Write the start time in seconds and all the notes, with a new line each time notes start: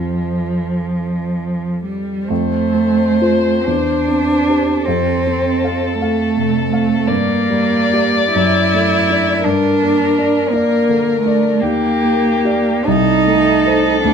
Already playing: F2 F3 C4 F4 A4
1.84 G3
2.28 F2 A3 C5
2.74 C4
3.21 F4 C5
3.65 E2 D4
4.08 C4
4.50 G4 C5
4.84 F2 C4 A4
5.27 C4
5.64 A4 F5
5.98 A3 A4 F5
6.37 C3
6.70 A3 A4 F5
7.07 G2 A#3 D5
7.50 G3
7.93 G4 D5
8.33 F#2 E4
8.74 A3
9.10 D4 D5
9.44 G2 D4 A#4
9.83 A#3
10.18 D4 D5
10.51 A#3 D4 D5
10.89 D3
11.22 A3 D4
11.27 D5
11.60 D#2 A#3 G4
12.03 A#3
12.45 G4 D5
12.85 C2 D#4 A4
13.27 A3
13.65 A4 C5
14.03 D2 D4